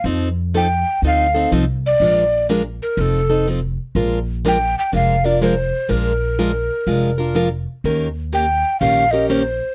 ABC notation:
X:1
M:4/4
L:1/8
Q:"Swing" 1/4=123
K:Bb
V:1 name="Recorder"
z2 g2 f2 z d- | d2 z B A2 z2 | z2 g g f d c2 | B6 z2 |
z2 g2 f e c2 |]
V:2 name="Steel-string acoustic guitar"
[F,CEA] z [F,CEA] z [F,CEA] [CEA] [F,CEA] z | [F,_A,DFB] z [F,A,DFB] z [F,CE=A] [CEA] [F,CEA] z | [F,_A,DFB] z [F,A,DFB] z [F,A,DFB] [DFB] [F,A,DFB] z | [F,_A,DFB] z [F,A,DFB] z [F,A,DFB] [DFB] [F,A,DFB] z |
[E,B,_DGB] z [E,B,DGB] z [E,B,DGB] [DGB] [E,B,DGB] z |]
V:3 name="Upright bass" clef=bass
F,,4 D,,2 C,,2 | B,,,4 F,,,4 | B,,,4 F,,,4 | B,,,4 F,,,4 |
E,,4 B,,,4 |]